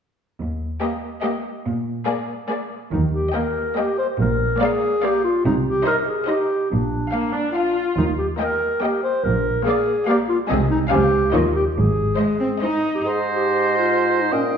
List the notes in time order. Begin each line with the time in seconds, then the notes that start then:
0.40 D#2
0.82 A#3 G4 D#5
1.23 A#3 G4 D#5
1.66 A#2
2.07 A#3 G#4 D5
2.49 A#3 G#4 D5
2.92 D#2 D#3 D#4
3.13 G4
3.34 A#3 A#4 D#5 G5
3.77 A#3 G4 D#5 G5
3.98 C5
4.19 A#1 A#2 A#4
4.60 A#3 G#4 D5 F5
5.03 A#3 G4 D5 F5
5.24 F4
5.45 C2 C3 D#4
5.67 G4
5.85 D#4 A#4 C5 D#5
6.07 G#4
6.27 D#4 G4 C5 D#5
6.71 A#1 A#2 D4
7.11 A#3 F5
7.34 D4
7.55 F4 F5
7.97 D#2 D#3 D#4
8.18 G4
8.39 A#3 A#4 D#5 G5
8.82 A#3 G4 D#5 G5
9.03 C5
9.24 A#1 A#2 A#4
9.65 A#3 G#4 F5
9.69 D5
10.07 A#3 G4 D5 F5
10.29 F4
10.49 C2 C3 G#3 C4 D#5 G#5
10.70 D#4
10.91 C#2 C#3 C4 G4 F5 G#5
11.34 D#2 D#3 A#3 F4 C#5 D#5
11.55 G4
11.76 G#1 G#2 G#4
12.17 G#3 C5 D#5
12.40 C4
12.62 G#3 D#4 C5 D#5
12.95 G4
13.04 G#2 G#4 C5 D#5
13.36 G4
13.78 F4
14.21 D#4
14.32 A#2 C#4 D#5 G5
14.52 D#4